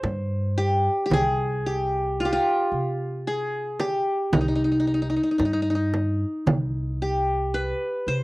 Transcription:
Already playing: C5
0.03 G2, frame drum
0.58 G4
1.06 G4
1.10 C2 G#4, frame drum
1.66 G4
2.20 F4
2.25 G4
2.33 F4
2.72 C3
3.27 G#4
3.80 G4, frame drum
4.32 C2 D#4, frame drum
4.41 D#4
4.48 D#4
4.56 D#4
4.64 D#4
4.72 D#4
4.80 D#4
4.87 D#4
4.94 D#4
5.02 D#4
5.10 D#4
5.16 D#4
5.23 D#4
5.31 D#4
5.38 G2 D#4, frame drum
5.45 D#4
5.53 D#4
5.62 D#4
5.70 D#4
5.75 D#4
5.94 frame drum
6.46 C2, frame drum
7.02 G4
7.54 B4
8.07 C3 C5

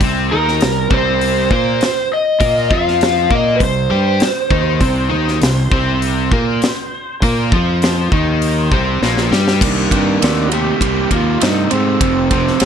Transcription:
0.01 C2 C3 C4, kick, open hi-hat
0.31 D#2 D#3 D#4 A#4
0.48 snare
0.61 C2 C3, snare, open hi-hat
0.90 C2 C3 C4 C5, kick
1.21 open hi-hat
1.51 A#2 A#3 A#4 C5, kick
1.81 snare, open hi-hat
2.14 D#5
2.40 A#2 A#3 A#4, kick, open hi-hat
2.70 F2 F3 F4 F5, kick
2.88 snare
3.01 snare, open hi-hat
3.30 A#2 A#3 A#4, kick
3.35 D#5
3.55 B4
3.60 C2 C3 C5, kick, open hi-hat
3.90 G2 G3 G4
4.20 muted overdriven electric guitar stroke, muted fingered electric bass stroke, snare, open hi-hat
4.51 D#2 D#3 D#4, kick
4.81 C2 C3 C4, kick, open hi-hat
5.10 D#2 D#3 D#4
5.28 snare
5.42 C2 C3, snare, open hi-hat
5.71 C2 C3 C4, kick
6.02 open hi-hat
6.32 A#2 A#3 A#4, kick
6.62 snare, open hi-hat
7.22 A#2 A#3 A#4, kick, open hi-hat
7.52 F2 F3 F4, kick
7.82 snare, open hi-hat
8.12 D#2 D#3 D#4, kick
8.42 open hi-hat
8.72 C2 C3 C4, kick
9.02 A#1 A#2 A#3, snare
9.18 snare
9.31 G2 G3 G4, snare
9.48 snare
9.61 C2 C3 D#3 G3 A#3 D4, kick, crash
9.91 G2 C3 G3, kick, ride
10.22 D#2 C3 A3, snare, ride
10.49 F#4, ride
10.53 C3 A3 G4
10.80 C2 C3 A#3, kick, ride
11.11 D#2 C3 A#3 F4, kick, ride
11.40 G2 C3 A3 D#4, snare, ride
11.70 G#2 C3 A3 C4, ride
12.00 F1 F2 C3 C4, kick, ride
12.31 F2 C3, kick, ride
12.48 snare
12.60 G#1 F2 D3, snare, ride

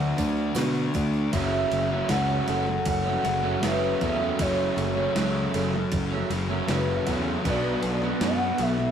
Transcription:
Already playing: D2 D3 F#3 A3 D4 F#4 A4 F#5
0.17 D2 A3 D4, kick, ride, tambourine
0.36 tambourine
0.55 B2 D3 A3 D4 F#4, snare, ride, tambourine
0.75 tambourine
0.94 D2 A3 D4 F#4, kick, ride, tambourine
1.13 tambourine
1.32 F#1 F#2 C#3 F#3 A3 C#4 E4 E5, kick, ride
1.71 F#1 A4, ride
1.91 C#3 F#3 A3 C#4
2.09 C#2 F#2 C#3 F#3 A3 C#4 F#5, snare, ride
2.47 F#1 F#2 C#3 F#3 A3 C#4 A4, ride
2.66 muted distorted electric guitar stroke, muted overdriven electric guitar stroke, snare
2.86 F#1 F#5, kick, ride
3.04 F#3 A3 C#4
3.23 F#1 F#2 C#3 F#3 F#4, muted overdriven electric guitar stroke, ride
3.27 F#2
3.43 F#3 A3 C#4, muted distorted electric guitar stroke
3.61 F#1 F#2 C#3 F#3 A3 C#4 B4 E5, snare, ride
3.99 E2 F#2 C#3 F#3 A3 C#4 A4, kick, ride
4.20 C#3 F#3 A3 C#4
4.39 F#1 F#2 C#3 F#3 A3 C#4 E4 C#5, kick, ride
4.77 F#1 A4, ride
4.96 C#3 F#3 A3 C#4
5.15 C#2 F#2 C#3 F#3 A3 C#4, snare, ride
5.53 F#1 F#2 C#3 F#3 A3 C#4 A4, ride
5.73 muted overdriven electric guitar stroke, muted distorted electric guitar stroke, snare
5.92 F#1, kick, ride
6.12 F#3 A3 C#4
6.30 F#1 F#2 C#3 F#3 F#4, muted overdriven electric guitar stroke, ride
6.49 F#3 A3 C#4, muted distorted electric guitar stroke
6.68 F#1 F#2 C#3 F#3 A3 C#4 B4, snare, ride
7.06 E2 F#2 C#3 F#3 A3 C#4 A4, kick, ride
7.25 C#3 F#3 A3 C#4
7.44 B1 B2 F#3 B3 D4 F#4, kick, ride
7.49 D5
7.82 B1 A4, ride
8.02 F#3 B3 D4, snare
8.21 F#2 B2 F#3 B3 D4 F#5, snare, ride
8.58 B1 B2 F#3 B3 D4 A4 E5, ride
8.77 muted distorted electric guitar stroke, muted overdriven electric guitar stroke, snare

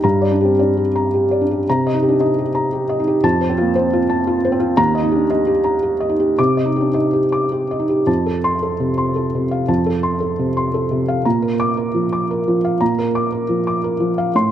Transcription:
0.04 G2 A#5
0.22 D5
0.31 D4
0.41 G4
0.45 C4
0.59 D4 D5
0.77 G4
0.96 A#5
1.14 G4
1.31 D5
1.41 D4
1.51 G4
1.69 C3 A#5
1.87 D#5
1.94 D#4
2.03 G4
2.09 D4
2.20 D#4 D#5
2.39 G4
2.55 A#5
2.73 G4
2.89 D#5
3.00 D#4
3.08 G4
3.24 F2 A5
3.41 C5
3.49 C4
3.58 A#3 F4
3.75 C4 C5
3.93 F4
4.09 A5
4.27 F4
4.45 C5
4.52 C4
4.60 F4
4.77 D#2 A#5
4.95 D#5
5.03 D#4
5.12 G4
5.16 D4
5.30 D#4 D#5
5.47 G4
5.64 A#5
5.83 G4
6.00 D#5
6.09 D#4
6.20 G4
6.39 C3 D6
6.57 D#5
6.65 D#4
6.76 G4
6.81 D4
6.94 D#4 D#5
7.13 G4
7.32 D6
7.52 G4
7.71 D#5
7.79 D#4
7.89 G4
8.07 F2 A5
8.26 A4
8.44 C6
8.63 A4
8.80 C3
8.98 C6
9.16 A4
9.35 C3
9.51 F5
9.68 F2 A5
9.86 A4
10.03 C6
10.20 A4
10.39 C3
10.57 C6
10.74 A4
10.91 C3
11.08 F5
11.25 A#2 A#5
11.42 A#4
11.60 D6
11.77 A#4
11.94 F3
12.13 D6
12.31 A#4
12.48 F3
12.65 F5
12.81 A#2 A#5
12.99 A#4
13.15 D6
13.32 A#4
13.49 F3
13.67 D6
13.84 A#4
14.00 F3
14.18 F5
14.35 A2 C6

